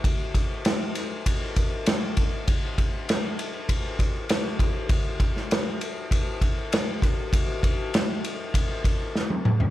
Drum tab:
RD |x-x-x-x-x-x-x-x-|x-x-x-x-x-x-x-x-|x-x-x-x-x-x-x-x-|x-x-x-x-x-x-----|
SD |----o-o-----o---|----o-------o---|---oo-------o---|----o-------o---|
T1 |----------------|----------------|----------------|-------------o--|
T2 |----------------|----------------|----------------|--------------o-|
FT |----------------|----------------|----------------|---------------o|
BD |o-o-----o-o---o-|o-o-----o-o---o-|o-o-----o-o---o-|o-o-----o-o-----|